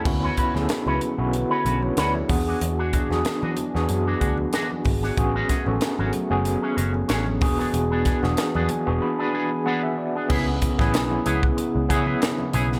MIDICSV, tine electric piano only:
0, 0, Header, 1, 2, 480
1, 0, Start_track
1, 0, Tempo, 640342
1, 41, Time_signature, 4, 2, 24, 8
1, 9591, End_track
2, 0, Start_track
2, 0, Title_t, "Tine electric piano"
2, 0, Program_c, 0, 4
2, 0, Control_c, 0, 64, 127
2, 39, Note_on_c, 0, 59, 83
2, 41, Note_on_c, 0, 61, 73
2, 45, Note_on_c, 0, 64, 73
2, 48, Note_on_c, 0, 66, 92
2, 51, Control_c, 0, 64, 0
2, 167, Control_c, 0, 64, 127
2, 302, Note_off_c, 0, 59, 0
2, 303, Note_off_c, 0, 61, 0
2, 305, Note_off_c, 0, 64, 0
2, 307, Note_off_c, 0, 66, 0
2, 406, Note_on_c, 0, 59, 76
2, 408, Note_on_c, 0, 61, 70
2, 410, Note_on_c, 0, 64, 70
2, 415, Note_on_c, 0, 68, 71
2, 458, Note_off_c, 0, 68, 0
2, 463, Note_on_c, 0, 69, 88
2, 747, Note_off_c, 0, 59, 0
2, 748, Note_off_c, 0, 61, 0
2, 749, Note_off_c, 0, 64, 0
2, 776, Note_off_c, 0, 69, 0
2, 882, Note_on_c, 0, 59, 77
2, 887, Note_on_c, 0, 61, 69
2, 889, Note_on_c, 0, 64, 74
2, 892, Note_on_c, 0, 66, 87
2, 1000, Note_off_c, 0, 61, 0
2, 1000, Note_off_c, 0, 64, 0
2, 1002, Note_off_c, 0, 66, 0
2, 1131, Note_on_c, 0, 69, 56
2, 1134, Note_on_c, 0, 61, 50
2, 1236, Note_off_c, 0, 69, 0
2, 1238, Note_off_c, 0, 61, 0
2, 1246, Note_on_c, 0, 71, 68
2, 1249, Note_on_c, 0, 62, 53
2, 1367, Note_off_c, 0, 71, 0
2, 1369, Note_off_c, 0, 62, 0
2, 1372, Note_on_c, 0, 73, 70
2, 1378, Note_on_c, 0, 64, 54
2, 1476, Note_off_c, 0, 73, 0
2, 1480, Note_off_c, 0, 64, 0
2, 1485, Note_on_c, 0, 74, 69
2, 1490, Note_on_c, 0, 66, 55
2, 1579, Note_off_c, 0, 59, 0
2, 1607, Note_off_c, 0, 74, 0
2, 1609, Note_off_c, 0, 66, 0
2, 1614, Note_on_c, 0, 76, 57
2, 1617, Note_on_c, 0, 68, 51
2, 1713, Note_on_c, 0, 59, 75
2, 1715, Note_off_c, 0, 68, 0
2, 1718, Note_on_c, 0, 62, 69
2, 1720, Note_on_c, 0, 66, 67
2, 1724, Note_on_c, 0, 68, 77
2, 1730, Control_c, 0, 64, 0
2, 1840, Note_off_c, 0, 76, 0
2, 1846, Control_c, 0, 64, 127
2, 2197, Note_off_c, 0, 59, 0
2, 2199, Note_off_c, 0, 62, 0
2, 2201, Note_off_c, 0, 66, 0
2, 2202, Note_off_c, 0, 68, 0
2, 2327, Note_on_c, 0, 59, 76
2, 2330, Note_on_c, 0, 62, 71
2, 2332, Note_on_c, 0, 66, 71
2, 2337, Note_on_c, 0, 68, 83
2, 2668, Note_off_c, 0, 59, 0
2, 2669, Note_off_c, 0, 62, 0
2, 2670, Note_off_c, 0, 66, 0
2, 2672, Note_off_c, 0, 68, 0
2, 2808, Note_on_c, 0, 59, 83
2, 2811, Note_on_c, 0, 62, 72
2, 2814, Note_on_c, 0, 66, 74
2, 2820, Note_on_c, 0, 68, 98
2, 3502, Note_off_c, 0, 59, 0
2, 3504, Note_off_c, 0, 62, 0
2, 3505, Note_off_c, 0, 66, 0
2, 3508, Note_off_c, 0, 68, 0
2, 3876, Note_on_c, 0, 59, 89
2, 3881, Note_on_c, 0, 61, 77
2, 3883, Note_on_c, 0, 66, 85
2, 3885, Note_on_c, 0, 68, 96
2, 3889, Control_c, 0, 64, 0
2, 4007, Control_c, 0, 64, 127
2, 4141, Note_off_c, 0, 59, 0
2, 4143, Note_off_c, 0, 61, 0
2, 4144, Note_off_c, 0, 66, 0
2, 4145, Note_off_c, 0, 68, 0
2, 4246, Note_on_c, 0, 59, 89
2, 4251, Note_on_c, 0, 61, 72
2, 4255, Note_on_c, 0, 66, 66
2, 4256, Note_on_c, 0, 69, 87
2, 4587, Note_off_c, 0, 59, 0
2, 4590, Note_off_c, 0, 61, 0
2, 4591, Note_off_c, 0, 66, 0
2, 4592, Note_off_c, 0, 69, 0
2, 4723, Note_on_c, 0, 59, 89
2, 4726, Note_on_c, 0, 61, 85
2, 4728, Note_on_c, 0, 66, 73
2, 4732, Note_on_c, 0, 68, 98
2, 5419, Note_off_c, 0, 59, 0
2, 5421, Note_off_c, 0, 61, 0
2, 5422, Note_off_c, 0, 66, 0
2, 5424, Note_off_c, 0, 68, 0
2, 5555, Note_on_c, 0, 59, 81
2, 5559, Note_on_c, 0, 62, 71
2, 5562, Note_on_c, 0, 66, 81
2, 5563, Note_on_c, 0, 68, 88
2, 5570, Control_c, 0, 64, 0
2, 5723, Control_c, 0, 64, 127
2, 6038, Note_off_c, 0, 59, 0
2, 6040, Note_off_c, 0, 62, 0
2, 6041, Note_off_c, 0, 66, 0
2, 6042, Note_off_c, 0, 68, 0
2, 6167, Note_on_c, 0, 59, 78
2, 6168, Note_on_c, 0, 62, 80
2, 6171, Note_on_c, 0, 66, 75
2, 6175, Note_on_c, 0, 68, 88
2, 6507, Note_off_c, 0, 59, 0
2, 6508, Note_off_c, 0, 62, 0
2, 6509, Note_off_c, 0, 66, 0
2, 6511, Note_off_c, 0, 68, 0
2, 6522, Note_on_c, 0, 80, 71
2, 6645, Note_on_c, 0, 59, 91
2, 6648, Note_on_c, 0, 62, 82
2, 6652, Note_on_c, 0, 66, 84
2, 6654, Note_on_c, 0, 68, 96
2, 6744, Note_off_c, 0, 80, 0
2, 6761, Note_on_c, 0, 83, 72
2, 6984, Note_off_c, 0, 83, 0
2, 7001, Note_on_c, 0, 80, 72
2, 7224, Note_off_c, 0, 80, 0
2, 7239, Note_on_c, 0, 78, 83
2, 7340, Note_off_c, 0, 59, 0
2, 7341, Note_off_c, 0, 62, 0
2, 7343, Note_off_c, 0, 66, 0
2, 7344, Note_off_c, 0, 68, 0
2, 7360, Note_off_c, 0, 78, 0
2, 7370, Note_on_c, 0, 76, 71
2, 7472, Note_off_c, 0, 76, 0
2, 7479, Note_on_c, 0, 74, 65
2, 7703, Note_off_c, 0, 74, 0
2, 7711, Note_on_c, 0, 59, 89
2, 7717, Note_on_c, 0, 61, 82
2, 7719, Note_on_c, 0, 64, 77
2, 7720, Note_on_c, 0, 68, 92
2, 7730, Control_c, 0, 64, 0
2, 7842, Control_c, 0, 64, 127
2, 7977, Note_off_c, 0, 59, 0
2, 7980, Note_off_c, 0, 61, 0
2, 7981, Note_off_c, 0, 64, 0
2, 7982, Note_off_c, 0, 68, 0
2, 8084, Note_on_c, 0, 59, 84
2, 8086, Note_on_c, 0, 61, 70
2, 8089, Note_on_c, 0, 64, 76
2, 8091, Note_on_c, 0, 68, 98
2, 8685, Note_off_c, 0, 59, 0
2, 8686, Note_off_c, 0, 61, 0
2, 8688, Note_off_c, 0, 64, 0
2, 8688, Note_off_c, 0, 68, 0
2, 8910, Note_on_c, 0, 59, 91
2, 8915, Note_on_c, 0, 61, 79
2, 8916, Note_on_c, 0, 64, 76
2, 8921, Note_on_c, 0, 68, 103
2, 9438, Note_off_c, 0, 59, 0
2, 9441, Note_off_c, 0, 61, 0
2, 9441, Note_off_c, 0, 64, 0
2, 9444, Note_off_c, 0, 68, 0
2, 9591, End_track
0, 0, End_of_file